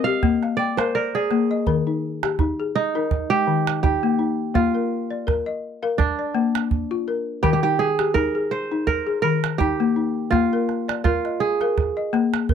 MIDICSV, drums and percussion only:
0, 0, Header, 1, 2, 480
1, 0, Start_track
1, 0, Tempo, 721154
1, 1110, Time_signature, 4, 2, 24, 8
1, 8347, End_track
2, 0, Start_track
2, 0, Title_t, "Calabash"
2, 152, Note_on_c, 9, 36, 63
2, 219, Note_off_c, 9, 36, 0
2, 283, Note_on_c, 9, 38, 20
2, 350, Note_off_c, 9, 38, 0
2, 522, Note_on_c, 9, 38, 52
2, 589, Note_off_c, 9, 38, 0
2, 869, Note_on_c, 9, 38, 21
2, 936, Note_off_c, 9, 38, 0
2, 1109, Note_on_c, 9, 36, 60
2, 1175, Note_off_c, 9, 36, 0
2, 1485, Note_on_c, 9, 38, 48
2, 1551, Note_off_c, 9, 38, 0
2, 1590, Note_on_c, 9, 36, 58
2, 1590, Note_on_c, 9, 38, 19
2, 1657, Note_off_c, 9, 36, 0
2, 1657, Note_off_c, 9, 38, 0
2, 2071, Note_on_c, 9, 36, 62
2, 2137, Note_off_c, 9, 36, 0
2, 2445, Note_on_c, 9, 38, 54
2, 2512, Note_off_c, 9, 38, 0
2, 2555, Note_on_c, 9, 36, 62
2, 2622, Note_off_c, 9, 36, 0
2, 3031, Note_on_c, 9, 36, 66
2, 3097, Note_off_c, 9, 36, 0
2, 3514, Note_on_c, 9, 36, 67
2, 3514, Note_on_c, 9, 38, 20
2, 3581, Note_off_c, 9, 36, 0
2, 3581, Note_off_c, 9, 38, 0
2, 3991, Note_on_c, 9, 36, 65
2, 4057, Note_off_c, 9, 36, 0
2, 4361, Note_on_c, 9, 38, 52
2, 4428, Note_off_c, 9, 38, 0
2, 4467, Note_on_c, 9, 36, 55
2, 4533, Note_off_c, 9, 36, 0
2, 4951, Note_on_c, 9, 36, 64
2, 5017, Note_off_c, 9, 36, 0
2, 5318, Note_on_c, 9, 38, 48
2, 5385, Note_off_c, 9, 38, 0
2, 5425, Note_on_c, 9, 36, 58
2, 5425, Note_on_c, 9, 38, 18
2, 5491, Note_off_c, 9, 36, 0
2, 5491, Note_off_c, 9, 38, 0
2, 5906, Note_on_c, 9, 36, 62
2, 5973, Note_off_c, 9, 36, 0
2, 6282, Note_on_c, 9, 38, 51
2, 6348, Note_off_c, 9, 38, 0
2, 6393, Note_on_c, 9, 36, 59
2, 6460, Note_off_c, 9, 36, 0
2, 6872, Note_on_c, 9, 36, 66
2, 6872, Note_on_c, 9, 38, 20
2, 6939, Note_off_c, 9, 36, 0
2, 6939, Note_off_c, 9, 38, 0
2, 7115, Note_on_c, 9, 38, 20
2, 7181, Note_off_c, 9, 38, 0
2, 7250, Note_on_c, 9, 38, 52
2, 7317, Note_off_c, 9, 38, 0
2, 7354, Note_on_c, 9, 36, 62
2, 7354, Note_on_c, 9, 38, 20
2, 7420, Note_off_c, 9, 36, 0
2, 7420, Note_off_c, 9, 38, 0
2, 7488, Note_on_c, 9, 38, 22
2, 7554, Note_off_c, 9, 38, 0
2, 7726, Note_on_c, 9, 38, 20
2, 7793, Note_off_c, 9, 38, 0
2, 7838, Note_on_c, 9, 36, 68
2, 7838, Note_on_c, 9, 38, 21
2, 7905, Note_off_c, 9, 36, 0
2, 7905, Note_off_c, 9, 38, 0
2, 8080, Note_on_c, 9, 38, 21
2, 8146, Note_off_c, 9, 38, 0
2, 8211, Note_on_c, 9, 38, 56
2, 8277, Note_off_c, 9, 38, 0
2, 8315, Note_on_c, 9, 36, 62
2, 8347, Note_off_c, 9, 36, 0
2, 8347, End_track
0, 0, End_of_file